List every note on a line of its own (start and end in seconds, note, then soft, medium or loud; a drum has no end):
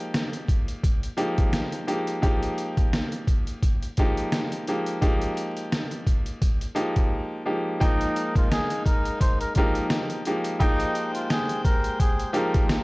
0.00 1.06 F3 medium
0.00 1.06 G#3 medium
0.00 1.06 A#3 medium
0.00 1.06 D#4 medium
0.00 1.06 G4 loud
0.14 cross-stick medium
0.14 snare loud
0.14 closed hi-hat medium
0.33 closed hi-hat medium
0.48 kick medium
0.48 closed hi-hat medium
0.68 closed hi-hat medium
0.83 kick medium
0.83 closed hi-hat loud
1.03 closed hi-hat medium
1.17 1.82 F3 medium
1.17 1.83 G#3 medium
1.17 1.83 A#3 medium
1.17 1.83 D#4 medium
1.17 1.83 G4 medium
1.17 closed hi-hat medium
1.38 kick medium
1.38 closed hi-hat medium
1.53 cross-stick medium
1.53 snare loud
1.53 closed hi-hat medium
1.72 closed hi-hat medium
1.87 2.20 F3 medium
1.87 2.20 G#3 medium
1.87 2.20 A#3 medium
1.87 2.20 D#4 medium
1.87 2.21 G4 medium
1.87 closed hi-hat medium
2.07 closed hi-hat medium
2.22 3.84 F3 medium
2.22 3.85 G#3 medium
2.22 3.85 A#3 medium
2.22 3.85 D#4 medium
2.22 3.85 G4 loud
2.22 kick loud
2.22 closed hi-hat medium
2.43 closed hi-hat medium
2.58 closed hi-hat medium
2.77 kick medium
2.77 closed hi-hat medium
2.93 cross-stick medium
2.93 snare loud
2.93 closed hi-hat medium
3.12 closed hi-hat medium
3.27 kick medium
3.27 closed hi-hat medium
3.47 closed hi-hat medium
3.63 kick medium
3.63 closed hi-hat medium
3.82 closed hi-hat medium
3.97 4.63 F3 medium
3.97 4.63 G#3 medium
3.97 4.63 A#3 medium
3.97 4.63 D#4 medium
3.97 4.63 G4 loud
3.97 kick medium
3.97 closed hi-hat medium
4.17 closed hi-hat medium
4.32 cross-stick medium
4.32 snare loud
4.32 closed hi-hat medium
4.52 closed hi-hat medium
4.67 5.00 F3 medium
4.67 5.00 G#3 medium
4.67 5.00 A#3 medium
4.67 5.00 D#4 medium
4.67 5.00 G4 medium
4.67 closed hi-hat medium
4.86 closed hi-hat medium
5.01 6.64 F3 medium
5.01 6.64 G#3 medium
5.01 6.64 A#3 medium
5.01 6.64 D#4 medium
5.01 6.64 G4 loud
5.01 kick loud
5.01 closed hi-hat medium
5.22 closed hi-hat medium
5.37 closed hi-hat medium
5.57 closed hi-hat soft
5.72 cross-stick medium
5.72 snare loud
5.72 closed hi-hat medium
5.91 closed hi-hat medium
6.07 kick medium
6.07 closed hi-hat medium
6.26 closed hi-hat medium
6.42 kick medium
6.42 closed hi-hat loud
6.61 closed hi-hat medium
6.75 7.40 F3 medium
6.75 7.41 G#3 medium
6.75 7.41 A#3 medium
6.75 7.41 D#4 medium
6.75 7.41 G4 medium
6.75 closed hi-hat medium
6.96 kick medium
6.96 closed hi-hat medium
7.45 7.78 F3 medium
7.45 7.78 G#3 medium
7.45 7.79 A#3 medium
7.45 7.79 D#4 medium
7.45 7.79 G4 medium
7.80 9.43 F3 medium
7.80 9.43 G#3 medium
7.80 10.22 G#3 medium
7.80 9.43 A#3 medium
7.80 10.22 A#3 medium
7.80 9.43 D#4 medium
7.80 8.32 D#4 loud
7.80 10.22 D#4 medium
7.80 10.22 A#4 medium
7.80 9.43 G5 loud
7.80 kick loud
7.80 closed hi-hat medium
8.01 closed hi-hat medium
8.16 closed hi-hat medium
8.35 8.50 F4 medium
8.35 kick loud
8.35 closed hi-hat medium
8.52 8.83 G#4 medium
8.52 cross-stick medium
8.52 snare loud
8.52 closed hi-hat medium
8.70 closed hi-hat medium
8.86 9.17 A#4 medium
8.86 kick medium
8.86 closed hi-hat medium
9.05 closed hi-hat medium
9.21 9.38 C5 medium
9.21 kick medium
9.21 closed hi-hat loud
9.40 9.54 A#4 medium
9.40 closed hi-hat medium
9.55 10.21 F3 medium
9.55 10.21 G#3 medium
9.55 10.21 A#3 medium
9.55 10.22 D#4 medium
9.55 10.22 G4 loud
9.55 9.87 A#4 medium
9.55 kick medium
9.55 closed hi-hat medium
9.75 closed hi-hat medium
9.90 cross-stick medium
9.90 snare loud
9.90 closed hi-hat medium
10.10 closed hi-hat medium
10.25 10.58 F3 medium
10.25 10.58 G#3 medium
10.25 10.58 A#3 medium
10.25 10.59 D#4 medium
10.25 10.59 G4 medium
10.25 closed hi-hat medium
10.44 closed hi-hat medium
10.59 12.22 F3 medium
10.59 12.22 G#3 medium
10.59 12.83 G#3 medium
10.59 12.22 A#3 medium
10.59 12.22 D#4 medium
10.59 11.11 D#4 loud
10.59 12.83 G4 medium
10.59 12.83 C5 loud
10.59 12.22 G5 loud
10.59 12.83 G5 medium
10.59 kick loud
10.59 closed hi-hat medium
10.80 closed hi-hat medium
10.95 closed hi-hat medium
11.14 11.28 F4 medium
11.14 closed hi-hat medium
11.30 11.62 G#4 medium
11.30 cross-stick loud
11.30 snare loud
11.30 closed hi-hat medium
11.49 closed hi-hat medium
11.64 11.96 A#4 medium
11.64 kick medium
11.64 closed hi-hat medium
11.84 closed hi-hat medium
12.00 12.31 G#4 medium
12.00 kick medium
12.00 closed hi-hat loud
12.20 closed hi-hat medium
12.33 12.83 F3 loud
12.33 12.83 G#3 medium
12.33 12.83 A#3 medium
12.33 12.83 D#4 medium
12.33 12.83 G4 loud
12.33 12.66 A#4 medium
12.33 closed hi-hat medium
12.54 kick medium
12.54 closed hi-hat medium
12.69 cross-stick medium
12.69 snare loud
12.69 closed hi-hat medium